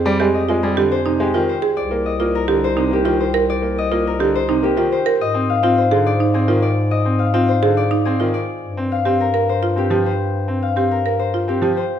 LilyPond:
<<
  \new Staff \with { instrumentName = "Harp" } { \time 3/4 \key c \minor \tempo 4 = 105 <g' aes' c'' d'' ees'' f''>8 ees''8 aes'8 c''8 g'8 c''8 | d''8 ees''8 bes'8 c''8 g'8 c''8 | d''8 ees''8 bes'8 c''8 g'8 c''8 | ees''8 f''8 c''8 d''8 aes'8 d''8 |
ees''8 f''8 c''8 d''8 aes'8 d''8~ | d''8 f''8 bes'8 c''8 g'8 c''8~ | c''8 f''8 bes'8 c''8 g'8 c''8 | }
  \new Staff \with { instrumentName = "Marimba" } { \time 3/4 \key c \minor r16 g'16 r16 f'16 r16 g'16 r16 ees'16 r16 f'16 r16 aes'16 | r8. f'16 r16 g'16 r16 ees'16 r16 f'16 r16 bes'16 | r8. f'16 r16 g'16 r16 ees'16 r16 f'16 r16 bes'16 | r8. f'16 r16 aes'16 r16 ees'16 r16 f'16 r8 |
r8. f'16 r16 aes'16 r16 ees'16 r16 f'16 r8 | r8. g'16 r16 bes'16 r16 f'16 r16 g'16 r8 | r8. g'16 r16 bes'16 r16 f'16 r16 g'16 r8 | }
  \new Staff \with { instrumentName = "Grand piano" } { \clef bass \time 3/4 \key c \minor g16 aes16 r16 aes16 g16 d16 r16 c16 aes16 ees16 r8 | r16 bes16 r16 bes16 r16 d16 r16 c16 bes16 ees16 r8 | r16 bes16 r16 bes16 r16 d16 r16 c16 bes16 ees16 r8 | r16 c'16 r16 c'16 r16 d16 r8 c'16 ees16 r8 |
r16 c'16 r16 c'16 r16 d16 r8 c'16 ees16 r8 | r16 c'16 r16 c'16 r4 c'16 f16 r8 | r16 c'16 r16 c'16 r4 c'16 f16 r8 | }
  \new Staff \with { instrumentName = "Bass clarinet" } { \clef bass \time 3/4 \key c \minor f,2. | c,2.~ | c,2. | aes,2.~ |
aes,2. | g,2.~ | g,2. | }
>>